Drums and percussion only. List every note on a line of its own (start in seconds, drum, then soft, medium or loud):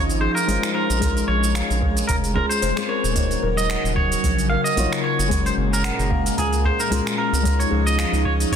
0.09 open hi-hat soft
0.09 shaker soft
0.37 shaker medium
0.49 open hi-hat medium
0.49 shaker medium
0.63 finger snap medium
0.63 open hi-hat soft
0.63 shaker soft
0.90 open hi-hat soft
0.90 shaker medium
1.02 kick loud
1.02 open hi-hat medium
1.02 shaker medium
1.17 open hi-hat soft
1.17 shaker soft
1.44 shaker medium
1.55 finger snap medium
1.55 open hi-hat medium
1.55 shaker medium
1.70 open hi-hat soft
1.70 shaker soft
1.82 kick loud
1.97 open hi-hat soft
1.97 shaker medium
2.09 kick loud
2.09 open hi-hat medium
2.09 shaker medium
2.24 open hi-hat soft
2.24 shaker soft
2.36 kick medium
2.51 open hi-hat soft
2.51 shaker medium
2.62 open hi-hat medium
2.62 shaker medium
2.77 finger snap medium
2.77 open hi-hat soft
2.77 shaker soft
3.04 open hi-hat soft
3.04 shaker medium
3.16 kick loud
3.16 open hi-hat medium
3.16 shaker medium
3.31 open hi-hat soft
3.31 shaker soft
3.58 shaker medium
3.70 finger snap medium
3.70 open hi-hat medium
3.70 shaker medium
3.85 open hi-hat soft
3.85 shaker soft
3.97 kick loud
4.12 open hi-hat soft
4.12 shaker medium
4.24 kick loud
4.24 open hi-hat medium
4.24 shaker medium
4.38 open hi-hat soft
4.38 shaker soft
4.66 shaker medium
4.77 open hi-hat medium
4.77 shaker medium
4.93 finger snap medium
4.93 open hi-hat soft
4.93 shaker soft
5.19 open hi-hat soft
5.19 shaker medium
5.31 kick loud
5.31 open hi-hat medium
5.31 shaker medium
5.46 open hi-hat soft
5.46 shaker soft
5.74 shaker medium
5.84 finger snap medium
5.84 open hi-hat medium
5.84 shaker medium
5.99 open hi-hat soft
5.99 shaker soft
6.11 kick medium
6.26 open hi-hat soft
6.26 shaker medium
6.38 kick loud
6.38 open hi-hat medium
6.38 shaker medium
6.53 open hi-hat soft
6.53 shaker soft
6.65 kick medium
6.80 shaker medium
6.92 open hi-hat medium
6.92 shaker medium
7.07 finger snap medium
7.07 open hi-hat soft
7.07 shaker soft
7.34 open hi-hat soft
7.34 shaker medium
7.45 kick loud
7.45 open hi-hat medium
7.45 shaker medium
7.60 open hi-hat soft
7.60 shaker soft
7.87 shaker medium
7.99 finger snap medium
7.99 open hi-hat medium
7.99 shaker medium
8.13 open hi-hat soft
8.13 shaker soft
8.25 kick loud
8.40 open hi-hat soft
8.40 shaker medium
8.52 kick loud
8.52 open hi-hat medium